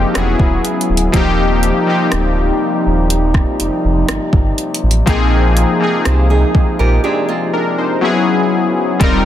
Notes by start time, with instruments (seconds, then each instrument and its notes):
Already playing: french horn section C3 G#3 A#3 D#4, synth keys F3 A#3 C4 D#4 G4, nylon-string guitar G4 C5
0.14 sub bass E1, french horn section C#3 F#3 E4, synth keys F#3 B3 C#4 E4 G#4, cross-stick, closed hi-hat
0.40 sub bass D#1, kick
0.65 closed hi-hat
0.81 closed hi-hat
0.90 sub bass D1
0.97 closed hi-hat
1.12 sub bass D#1, french horn section C3 F3 G3 D#4, synth keys F3 A#3 C4 D#4 G4, kick, closed hi-hat
1.63 closed hi-hat
1.86 synth keys F3 A#3 C4 D#4 G4
2.12 sub bass D1, cross-stick, closed hi-hat
2.86 sub bass D#1
3.10 closed hi-hat
3.34 kick, cross-stick
3.60 sub bass F1, closed hi-hat
3.85 sub bass F1
4.09 sub bass G1, cross-stick, closed hi-hat
4.33 sub bass G1, kick
4.58 closed hi-hat
4.74 closed hi-hat
4.83 sub bass A1
4.91 closed hi-hat
5.06 sub bass A#1, synth keys F3 A#3 C4 D#4 G#4, french horn section G#3 A#3 D#4, kick, closed hi-hat
5.57 closed hi-hat
5.80 synth keys F3 A#3 C4 D#4 G#4
6.05 sub bass C2, nylon-string guitar G4 C5, cross-stick, closed hi-hat
6.30 nylon-string guitar D#4 G#4
6.55 kick
6.79 sub bass A#1, synth keys A#3 G4, nylon-string guitar F4 A#4
7.04 synth keys C4 G#4, nylon-string guitar D4 G4
7.28 nylon-string guitar C4 F4
7.54 synth keys D4 A#4
7.78 synth keys D#4 C5
8.01 french horn section C#3 F#3 E4, synth keys F#3 B3 C#4 E4 G#4
9.00 sub bass D#1, synth keys G3 C4 D#4 F4 A#4, kick, closed hi-hat